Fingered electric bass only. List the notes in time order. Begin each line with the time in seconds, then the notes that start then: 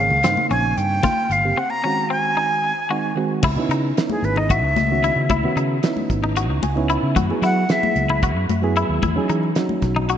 0.10 C#2
0.24 G2
0.37 muted fingered electric bass stroke
0.51 A#1
0.77 G2
1.30 G1
3.43 C#2
3.56 C#3
3.69 C#3
4.22 G#1
4.62 C#2
4.75 C#2
5.16 C#3
5.29 C#2
5.43 C#3
5.56 C#3
6.10 G#1
6.49 C#2
6.63 C#2
7.03 C#3
7.16 F#2
7.29 F#3
7.42 F#3
7.96 C#2
8.36 F#2
8.49 F#2
8.89 D#2
9.03 E2
9.16 E3
9.29 E3
9.82 B1